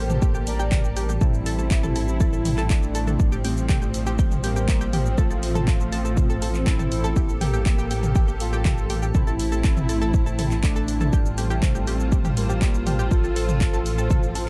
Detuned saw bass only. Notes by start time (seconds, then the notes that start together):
Already playing: A1
1.21 A1
3.20 A1
5.18 A1
7.16 A1
9.15 A1
11.13 A1
13.11 A1